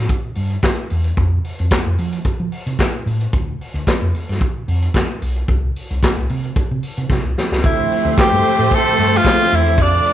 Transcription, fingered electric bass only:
0.36 G2
0.91 E2
1.18 F2
1.60 F2
1.86 F2
1.99 F3
2.40 F3
2.66 C3
3.06 A2
3.33 D2
3.74 D2
4.02 F2
4.29 G2
4.68 F2
5.22 B1
5.49 C2
5.90 C2
6.17 C2
6.30 C3
6.71 C3
6.98 C3
7.10 C3
7.25 C2
7.51 C#2
7.64 D2
8.05 D2
8.32 G2
8.59 A2
8.99 G2
9.52 E2
9.78 F2

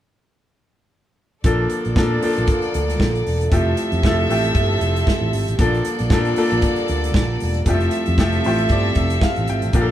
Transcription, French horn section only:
1.44 D3 A#3 F4 A4
3.51 F3 G3 E4 G4
5.58 D3 A#3 F4
7.65 F3 E4 G4
9.74 D3 A#3 F4

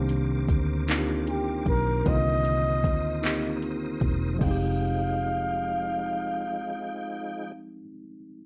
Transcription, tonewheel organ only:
Already playing: A#4 C5 D6
2.06 D#6
4.41 F3 G#3 D#4 G5

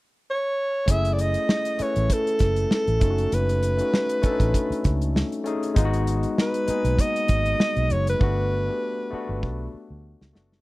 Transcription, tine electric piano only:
0.86 A3 C#4 E4 G#4
1.78 A3 C#4 E4 B4
3.00 A3 C#4 D#4 F4
3.10 F#4
3.77 A3 C#4 D#4 F#4
4.22 A3 C#4 D4 A4
4.31 D#4
5.44 A3 C#4 D#4 G#4
5.74 G#3 B3 D#4
5.78 F4
5.85 F#4
6.66 G#3 A#3 D#4 G#4
6.74 B3
8.19 A3 B3 D4 F#4
8.66 A3 B3 D4 G4
9.11 A3 B3 D4 F#4
10.33 A3 B3 D4 F#4

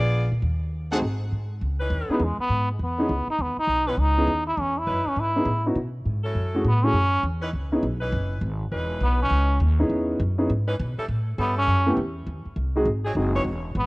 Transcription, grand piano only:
0.92 A3 C4 D#4 F#4 G#4
2.10 B3 C#4 D#4 E4 G#4
2.99 B3 C#4 D#4 E4 G#4
4.18 B3 C#4 D#4 E4 G#4
5.36 B3 C#4 D#4 E4 G#4
5.66 B3 C#4 D#4 E4 F#4
6.54 A3 C#4 E4 F#4 G#4
6.84 A3 C#4 E4 F#4 G#4
7.72 B3 C#4 D#4 E4 G#4
9.79 B3 C#4 D#4 E4 G#4
10.38 B3 C#4 D#4 E4 G#4
11.86 A3 B3 C#4 E4 G4
12.76 G#3 C4 D#4 F#4 G#4
13.15 G#3 C4 D#4 F#4 G#4

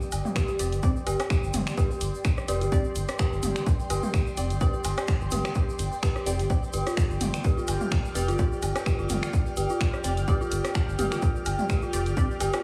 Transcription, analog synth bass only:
0.12 G1
0.59 F1
0.72 G1
1.07 G1
1.43 G1
1.54 G1
2.01 G1
2.48 F1
2.61 G1
2.96 G1
3.32 G1
3.43 G1
3.90 G1
4.37 F1
4.50 G1
4.85 G1
5.21 G1
5.32 G1
5.79 G1
6.26 F1
6.39 G1
6.74 G1
7.10 G1
7.21 G1
7.68 G1
8.15 F1
8.28 G1
8.62 G1
8.99 G1
9.10 G1
9.57 G1
10.04 F1
10.17 G1
10.52 G1
10.88 G1
10.99 G1
11.46 G1
11.93 F1
12.06 G1
12.41 G1

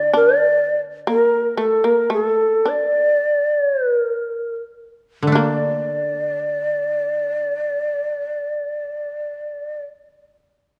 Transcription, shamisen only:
Already playing: D4
0.13 D4
1.07 A#3
1.57 A3
1.84 A#3
2.10 A3
2.65 D4
5.35 A#3
6.02 B3
6.28 C4
6.53 C#4
6.79 D4

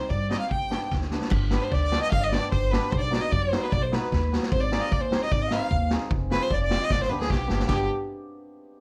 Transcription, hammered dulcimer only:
0.29 C4 D#4 G4
0.70 B3 D4 G4
1.12 B3 D4 G4
1.50 B3 D4 G4
1.91 B3 D4 G4
2.33 B3 D4 G4
2.72 B3 D4 G4
3.10 B3 D#4 F#4
3.53 B3 D#4 F#4
3.92 B3 D#4 F#4
4.32 B3 D#4 F#4
4.71 C4 D#4 G#4
5.11 C4 D#4 G4
5.51 C4 D#4 B4
5.91 C4 D#4 G#4
6.30 C4 F4 G#4
6.69 C4 F4 G4
7.09 B3 D4 G4
7.47 B3 D4 G4
7.68 B3 D4 G4

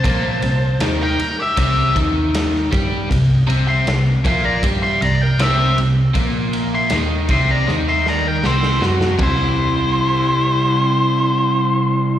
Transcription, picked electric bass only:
0.05 A#1
0.42 C2
0.79 D#2
1.19 muted picked electric bass stroke
1.58 C2
1.96 D#2
2.73 G2
3.11 C2
3.49 C2
3.87 C2
4.25 A#1
4.63 G2
5.01 C2
5.39 C2
5.77 C2
6.15 A#1
6.92 D#2
7.29 C2
7.68 D#2
8.43 C2
8.81 F#2
9.20 C2

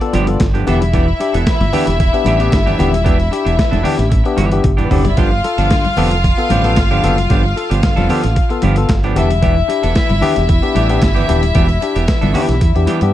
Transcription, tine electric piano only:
0.01 B3 F4 A4
0.14 G2 D3
0.27 B3 F4 A4
0.40 F4 A4
0.54 G2 D3
0.67 B3 D4 G4
0.93 E3
1.20 D4 G4
1.47 E3
1.73 B3 D4 G4
1.87 D4 G4
2.14 B3 D4 G4
2.26 E3
2.40 B3 D4 G4
2.53 D4 G4
2.67 E3
2.79 B3 D4 G4
3.06 E3
3.32 D4 G4
3.59 E3
3.85 B3 D4 G4
4.00 D4 G4
4.25 B3 D4 G4
4.39 E3
4.52 B3 D4 G4
4.65 D4 G4
4.79 E3
4.91 B3 D4 G4
5.18 G2 D3
5.44 F4 A4
5.71 G2 D3
5.97 B3 F4 A4
6.12 F4 A4
6.38 B3 F4 A4
6.50 G2 D3
6.64 B3 F4 A4
6.77 F4 A4
6.91 G2 D3
7.03 B3 F4 A4
7.30 G2 D3
7.56 F4 A4
7.83 G2 D3
8.10 B3 F4 A4
8.24 F4 A4
8.50 B3 F4 A4
8.63 G2 D3
8.77 B3 F4 A4
8.90 F4 A4
9.04 G2 D3
9.16 B3 D4 G4
9.42 E3
9.68 D4 G4
9.95 E3
10.22 B3 D4 G4
10.37 D4 G4
10.62 B3 D4 G4
10.76 E3
10.89 B3 D4 G4
11.02 D4 G4
11.17 E3
11.29 B3 D4 G4
11.56 E3
11.82 D4 G4
12.09 E3
12.35 B3 D4 G4
12.49 D4 G4
12.76 B3 D4 G4
12.89 E3
13.02 B3 D4 G4

